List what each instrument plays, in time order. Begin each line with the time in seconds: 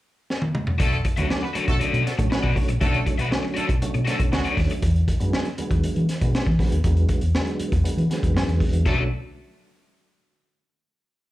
0.30 snare
0.42 high tom
0.55 mid tom
0.67 floor tom
0.78 fingered electric bass B1, horn section A3 D4 F#4 A4, overdriven electric guitar F#4 A4 D5, kick, closed hi-hat
0.92 closed hi-hat
1.05 muted overdriven electric guitar stroke, kick, closed hi-hat
1.17 fingered electric bass D2, tonewheel organ D3 F#3 A3 C#4, horn section B3 D4 F#4 B4, overdriven electric guitar F#4 A4 E5, closed hi-hat
1.29 horn section D4 A4 B4 D5, muted overdriven electric guitar stroke, snare
1.42 horn section B3 D4 F#4 B4, muted overdriven electric guitar stroke
1.53 tonewheel organ D3 F#3 A3 C#4, overdriven electric guitar F#4 A4 D5, muted fingered electric bass stroke, closed hi-hat
1.66 fingered electric bass B1, horn section A3 D4 F#4 A4, muted overdriven electric guitar stroke, kick, closed hi-hat
1.80 overdriven electric guitar F#4 A4 D5, muted fingered electric bass stroke, closed hi-hat
1.93 fingered electric bass B2, closed hi-hat
2.05 horn section A3 D4 F#4 A4, muted overdriven electric guitar stroke, snare, closed hi-hat
2.18 fingered electric bass A2, tonewheel organ D3 F#3 A3 C#4, muted overdriven electric guitar stroke, kick, closed hi-hat
2.30 horn section B3 D4 F#4 B4, muted overdriven electric guitar stroke, snare
2.43 fingered electric bass B2, overdriven electric guitar F#4 A4 D5, kick
2.56 tonewheel organ D3 F#3 A3 C#4, muted overdriven electric guitar stroke, kick, open hi-hat
2.69 fingered electric bass A#1, muted overdriven electric guitar stroke, closed hi-hat
2.81 fingered electric bass B1, tonewheel organ D3 F#3 A3 C#4, horn section A3 D4 F#4 A4, overdriven electric guitar F#4 A4 D5, kick, closed hi-hat
2.94 closed hi-hat
3.06 muted overdriven electric guitar stroke, kick, closed hi-hat
3.18 fingered electric bass B1, horn section B3 D4 F#4 B4, overdriven electric guitar F#4 A4 E5, closed hi-hat
3.31 tonewheel organ D3 F#3 A3 C#4, muted overdriven electric guitar stroke, snare
3.43 muted overdriven electric guitar stroke
3.54 horn section A3 D4 F#4 A4, overdriven electric guitar F#4 A4 D5, muted fingered electric bass stroke, closed hi-hat
3.68 fingered electric bass B1, muted overdriven electric guitar stroke, kick, closed hi-hat
3.81 tonewheel organ D3 F#3 A3 C#4, muted fingered electric bass stroke, closed hi-hat
3.94 fingered electric bass B2, muted overdriven electric guitar stroke, closed hi-hat
4.05 tonewheel organ D3 F#3 A3 C#4, horn section A3 D4 F#4 A4, overdriven electric guitar F#4 A4 E5, snare, closed hi-hat
4.19 fingered electric bass B1, muted overdriven electric guitar stroke, kick, closed hi-hat
4.32 fingered electric bass D2, horn section F#3 B3 D4 F#4, muted overdriven electric guitar stroke, snare
4.45 overdriven electric guitar F#4 A4 D5, closed hi-hat
4.57 fingered electric bass D#2, muted overdriven electric guitar stroke, kick, snare, open hi-hat
4.70 muted overdriven electric guitar stroke, closed hi-hat
4.82 fingered electric bass E2, kick, closed hi-hat
4.96 closed hi-hat
5.08 kick, closed hi-hat
5.20 fingered electric bass F#2, tonewheel organ D3 F#3 G#3 B3, closed hi-hat
5.33 snare
5.45 closed hi-hat
5.58 tonewheel organ D3 F#3 G#3 B3, muted fingered electric bass stroke, closed hi-hat
5.71 fingered electric bass E2, kick, closed hi-hat
5.84 muted fingered electric bass stroke, closed hi-hat
5.96 fingered electric bass E3, closed hi-hat
6.09 snare, closed hi-hat
6.21 fingered electric bass B2, tonewheel organ D3 F#3 G#3 B3, kick, closed hi-hat
6.35 snare
6.46 fingered electric bass E3, kick
6.59 tonewheel organ D3 F#3 G#3 B3, kick, snare, open hi-hat
6.72 fingered electric bass D#2, closed hi-hat
6.84 fingered electric bass E2, tonewheel organ D3 F#3 G#3 A#3, kick, closed hi-hat
6.91 tonewheel organ B3
6.97 closed hi-hat
7.09 kick, closed hi-hat
7.21 fingered electric bass E2, closed hi-hat
7.35 tonewheel organ D3 F#3 G#3 B3, snare
7.47 closed hi-hat
7.60 muted fingered electric bass stroke, closed hi-hat
7.72 fingered electric bass E2, kick, closed hi-hat
7.84 tonewheel organ D3 F#3 G#3 B3, muted fingered electric bass stroke, closed hi-hat
7.97 fingered electric bass E3, closed hi-hat
8.10 tonewheel organ D3 F#3 G#3 B3, snare, closed hi-hat
8.23 fingered electric bass E2, kick, closed hi-hat
8.34 fingered electric bass F#2, snare
8.47 fingered electric bass E2, closed hi-hat
8.60 kick, open hi-hat
8.73 fingered electric bass E2, closed hi-hat
8.85 fingered electric bass B1, tonewheel organ D3 F#3 A3 C#4, horn section F#3 A3 D4 A4, overdriven electric guitar F#4 A4 D5, kick, crash